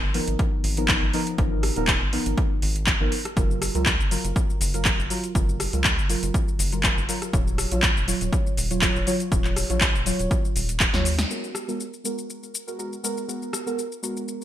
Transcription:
0.03 analog synth bass G#1
0.14 synth stab F3 B3 D#4 A#4, open hi-hat
0.28 analog synth bass G#1, closed hi-hat
0.39 kick, closed hi-hat
0.64 analog synth bass G#1, open hi-hat
0.77 synth stab F3 B3 D#4 A#4, closed hi-hat
0.88 synth stab F3 B3 D#4 A#4, kick, clap, closed hi-hat
1.02 analog synth bass G#1
1.13 synth stab F3 B3 D#4 A#4, open hi-hat
1.27 closed hi-hat
1.38 analog synth bass G#1, synth stab F3 B3 D#4 A#4, kick, closed hi-hat
1.63 cross-stick, open hi-hat
1.76 analog synth bass D#1, synth stab F3 B3 D#4 A#4, closed hi-hat
1.87 kick, clap, closed hi-hat
2.01 analog synth bass G#1
2.12 synth stab F3 B3 D#4 A#4, open hi-hat
2.26 analog synth bass G#1, closed hi-hat
2.38 kick, closed hi-hat
2.62 analog synth bass G#1, open hi-hat
2.76 closed hi-hat
2.87 kick, clap, closed hi-hat
3.00 analog synth bass G#1, synth stab F3 B3 D#4 A#4
3.12 open hi-hat
3.25 cross-stick, closed hi-hat
3.37 analog synth bass F#1, synth stab F#3 F4 A#4, kick, closed hi-hat, shaker
3.51 shaker
3.62 cross-stick, open hi-hat, shaker
3.75 analog synth bass C#2, synth stab F#3 F4 A#4, closed hi-hat, shaker
3.86 kick, clap, closed hi-hat, shaker
4.00 analog synth bass F#1, shaker
4.11 synth stab F#3 F4 A#4, open hi-hat, shaker
4.24 analog synth bass F#1, closed hi-hat, shaker
4.36 kick, closed hi-hat, shaker
4.50 shaker
4.61 analog synth bass F#1, open hi-hat, shaker
4.74 synth stab F#3 F4 A#4, closed hi-hat, shaker
4.85 synth stab F#3 F4 A#4, kick, clap, closed hi-hat, shaker
4.99 analog synth bass F#1, shaker
5.10 synth stab F#3 F4 A#4, open hi-hat, shaker
5.24 closed hi-hat, shaker
5.35 analog synth bass F#1, synth stab F#3 F4 A#4, kick, closed hi-hat, shaker
5.49 shaker
5.60 cross-stick, open hi-hat, shaker
5.73 analog synth bass C#2, synth stab F#3 F4 A#4, closed hi-hat, shaker
5.84 kick, clap, closed hi-hat, shaker
5.98 analog synth bass F#1, shaker
6.09 synth stab F#3 F4 A#4, open hi-hat, shaker
6.23 analog synth bass F#1, closed hi-hat, shaker
6.34 kick, closed hi-hat, shaker
6.48 shaker
6.59 analog synth bass F#1, open hi-hat, shaker
6.72 synth stab F#3 F4 A#4, closed hi-hat, shaker
6.83 synth stab F#3 F4 A#4, kick, clap, closed hi-hat, shaker
6.97 analog synth bass F#1, shaker
7.09 synth stab F#3 F4 A#4, open hi-hat, shaker
7.22 cross-stick, closed hi-hat, shaker
7.33 analog synth bass D#1, synth stab F#3 F4 C#5, kick, closed hi-hat, shaker
7.47 shaker
7.58 cross-stick, open hi-hat, shaker
7.71 analog synth bass A#1, synth stab F#3 F4 C#5, closed hi-hat, shaker
7.83 kick, clap, closed hi-hat, shaker
7.96 analog synth bass D#1, shaker
8.07 synth stab F#3 F4 C#5, open hi-hat, shaker
8.21 analog synth bass D#1, closed hi-hat, shaker
8.33 kick, closed hi-hat, shaker
8.47 shaker
8.57 analog synth bass D#1, open hi-hat, shaker
8.71 synth stab F#3 F4 C#5, closed hi-hat, shaker
8.82 synth stab F#3 F4 C#5, kick, clap, closed hi-hat, shaker
8.95 analog synth bass D#1, shaker
9.07 synth stab F#3 F4 C#5, open hi-hat, shaker
9.20 closed hi-hat, shaker
9.32 analog synth bass D#1, synth stab F#3 F4 C#5, kick, closed hi-hat, shaker
9.44 clap, shaker
9.56 cross-stick, open hi-hat, shaker
9.70 analog synth bass A#1, synth stab F#3 F4 C#5, closed hi-hat, shaker
9.81 kick, clap, closed hi-hat, shaker
9.95 analog synth bass D#1, shaker
10.06 synth stab F#3 F4 C#5, open hi-hat, shaker
10.19 analog synth bass D#1, closed hi-hat, shaker
10.31 kick, closed hi-hat, shaker
10.45 shaker
10.55 analog synth bass D#1, open hi-hat, shaker
10.69 closed hi-hat, shaker
10.80 kick, clap, closed hi-hat, shaker
10.94 analog synth bass D#2, synth stab F#3 F4 C#5, snare, shaker
11.05 open hi-hat, shaker
11.19 snare, closed hi-hat, shaker
11.30 synth stab G#3 B3 F#4 A#4, shaker
11.44 shaker
11.55 cross-stick, shaker
11.68 synth stab G#3 B3 F#4 A#4, shaker
11.80 shaker
11.94 shaker
12.04 synth stab G#3 B3 F#4 A#4, shaker
12.18 shaker
12.30 shaker
12.43 shaker
12.55 shaker
12.67 synth stab G#3 B3 F#4 A#4, shaker
12.79 synth stab G#3 B3 F#4 A#4, shaker
12.93 shaker
13.03 synth stab G#3 B3 F#4 A#4, shaker
13.18 shaker
13.28 synth stab G#3 B3 F#4 A#4, shaker
13.42 shaker
13.53 cross-stick, shaker
13.66 synth stab G#3 B3 F#4 A#4, shaker
13.79 shaker
13.92 shaker
14.02 synth stab G#3 B3 F#4 A#4, shaker
14.17 shaker
14.28 shaker

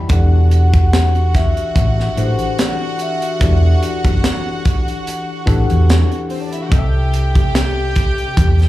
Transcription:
Already playing: tine electric piano E3 E4 G4 D5 E5 F#5 G5 B5
0.09 fingered electric bass E1, tine electric piano E3 D4 G4 A4 F#5, violin section F#4 F#5, kick, closed hi-hat
0.13 vibraphone D5
0.51 vibraphone F#5, closed hi-hat
0.74 kick, closed hi-hat
0.93 snare, closed hi-hat
1.15 closed hi-hat
1.34 vibraphone E5, kick, snare, closed hi-hat
1.57 closed hi-hat
1.76 fingered electric bass A1, kick, closed hi-hat
2.00 snare
2.16 fingered electric bass A1, tine electric piano E3 D4 F#4 A4 F#5, vibraphone C5, closed hi-hat
2.24 tine electric piano G4
2.39 closed hi-hat
2.58 vibraphone D5, snare, closed hi-hat
2.99 vibraphone E5, closed hi-hat
3.22 closed hi-hat
3.39 fingered electric bass E1, tine electric piano E3 D4 G4 A4 D5, kick, closed hi-hat
3.83 closed hi-hat
4.05 fingered electric bass F#1, kick, closed hi-hat
4.24 snare, closed hi-hat
4.65 kick, closed hi-hat
4.88 closed hi-hat
5.07 closed hi-hat
5.46 fingered electric bass A1, tine electric piano E3 D4 G4 A4 F#5, kick, closed hi-hat
5.70 fingered electric bass E2, closed hi-hat
5.90 snare, closed hi-hat
6.12 closed hi-hat
6.30 violin section C4 C5, open hi-hat
6.42 violin section D4 D5
6.52 violin section E4 E5, closed hi-hat
6.62 violin section F#4 F#5
6.69 fingered electric bass C2, tine electric piano C3 C4 A4 D#5, violin section G4 G5, kick, closed hi-hat
6.79 tine electric piano E5
7.14 closed hi-hat
7.35 kick, closed hi-hat
7.55 snare, closed hi-hat
7.96 kick, closed hi-hat
8.18 closed hi-hat
8.37 fingered electric bass E2, kick, closed hi-hat
8.59 snare, closed hi-hat

